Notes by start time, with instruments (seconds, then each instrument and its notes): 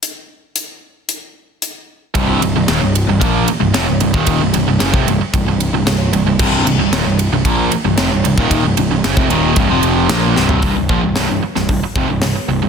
0.03 closed hi-hat
0.56 closed hi-hat
1.09 closed hi-hat
1.62 closed hi-hat
2.14 picked electric bass C1, overdriven electric guitar C2 G2 C3, kick, ride
2.41 picked electric bass C1, overdriven electric guitar C2 G2, ride
2.56 picked electric bass C1, overdriven electric guitar C2 G2
2.68 picked electric bass D#1, overdriven electric guitar D#2 A#2, snare, ride
2.81 picked electric bass C1, overdriven electric guitar C2 G2
2.95 ride
3.07 picked electric bass C1, overdriven electric guitar C2 G2
3.20 picked electric bass A#1, overdriven electric guitar A#2 F3 A#3, kick, ride
3.46 muted overdriven electric guitar stroke, muted distorted electric guitar stroke, muted picked electric bass stroke, ride
3.60 picked electric bass C1, overdriven electric guitar C2 G2
3.74 picked electric bass F1, overdriven electric guitar F2 C3, snare, ride
3.88 picked electric bass C1, overdriven electric guitar C2 G2
4.00 picked electric bass C1, overdriven electric guitar C2 G2, ride
4.14 picked electric bass D#1, overdriven electric guitar D#2 A#2 D#3, kick
4.27 kick, ride
4.40 picked electric bass C1, overdriven electric guitar C2 G2
4.53 picked electric bass C1, overdriven electric guitar C2 G2, ride
4.67 picked electric bass C1, overdriven electric guitar C2 G2
4.79 picked electric bass F#1, overdriven electric guitar F#2 C#3, snare, ride
4.93 picked electric bass F1, overdriven electric guitar F2 C3, kick
5.06 picked electric bass C1, overdriven electric guitar C2 G2, ride
5.20 muted overdriven electric guitar stroke, muted distorted electric guitar stroke, muted picked electric bass stroke
5.33 picked electric bass C1, overdriven electric guitar C2 G2, kick, ride
5.46 picked electric bass C1, overdriven electric guitar C2 G2
5.60 ride
5.72 picked electric bass C1, overdriven electric guitar C2 G2
5.85 picked electric bass C1, overdriven electric guitar C2 G2, snare, ride
6.12 picked electric bass C1, overdriven electric guitar C2 G2, ride
6.25 picked electric bass C1, overdriven electric guitar C2 G2
6.39 picked electric bass C1, overdriven electric guitar C2 G2 C3, kick, crash
6.64 picked electric bass C1, overdriven electric guitar C2 G2, ride
6.78 picked electric bass C1, overdriven electric guitar C2 G2
6.91 picked electric bass D#1, overdriven electric guitar D#2 A#2, snare, ride
7.04 picked electric bass C1, overdriven electric guitar C2 G2
7.19 ride
7.30 picked electric bass C1, overdriven electric guitar C2 G2
7.44 picked electric bass A#1, overdriven electric guitar A#2 F3 A#3, kick, ride
7.71 muted overdriven electric guitar stroke, muted picked electric bass stroke, muted distorted electric guitar stroke, ride
7.84 picked electric bass C1, overdriven electric guitar C2 G2
7.98 picked electric bass F1, overdriven electric guitar F2 C3, snare, ride
8.12 picked electric bass C1, overdriven electric guitar C2 G2
8.25 picked electric bass C1, overdriven electric guitar C2 G2, ride
8.38 picked electric bass D#1, overdriven electric guitar D#2 A#2 D#3, kick
8.51 kick, ride
8.64 picked electric bass C1, overdriven electric guitar C2 G2
8.77 picked electric bass C1, overdriven electric guitar C2 G2, ride
8.91 picked electric bass C1, overdriven electric guitar C2 G2
9.04 picked electric bass F#1, overdriven electric guitar F#2 C#3, snare, ride
9.17 picked electric bass F1, overdriven electric guitar F2 C3, kick
9.30 picked electric bass D#1, overdriven electric guitar D#2 A#2 D#3, ride
9.56 picked electric bass C1, overdriven electric guitar C2 G2, kick, ride
9.71 picked electric bass F1, overdriven electric guitar F2 C3 F3
9.83 ride
10.09 picked electric bass A#1, overdriven electric guitar A#2 F3 A#3, snare, ride
10.36 picked electric bass C1, overdriven electric guitar C2 G2 C3, snare
10.49 floor tom
10.62 picked electric bass C1, overdriven electric guitar C2 G2, kick, open hi-hat
10.78 picked electric bass C1, overdriven electric guitar C2 G2
10.89 picked electric bass A#1, overdriven electric guitar A#2 F3, kick
11.04 picked electric bass C1, overdriven electric guitar C2 G2
11.16 picked electric bass C1, overdriven electric guitar C2 G2, snare, open hi-hat
11.29 picked electric bass C1, overdriven electric guitar C2 G2
11.43 muted distorted electric guitar stroke, muted picked electric bass stroke, muted overdriven electric guitar stroke
11.55 picked electric bass C1, overdriven electric guitar C2 G2, snare
11.69 picked electric bass C1, overdriven electric guitar C2 G2, kick, open hi-hat
11.83 muted picked electric bass stroke, muted overdriven electric guitar stroke, muted distorted electric guitar stroke
11.95 picked electric bass F1, overdriven electric guitar F2 C3, kick
12.08 picked electric bass C1, overdriven electric guitar C2 G2
12.22 picked electric bass C1, overdriven electric guitar C2 G2, snare, open hi-hat
12.35 muted distorted electric guitar stroke, muted picked electric bass stroke, muted overdriven electric guitar stroke
12.48 picked electric bass C1, overdriven electric guitar C2 G2
12.62 picked electric bass C1, overdriven electric guitar C2 G2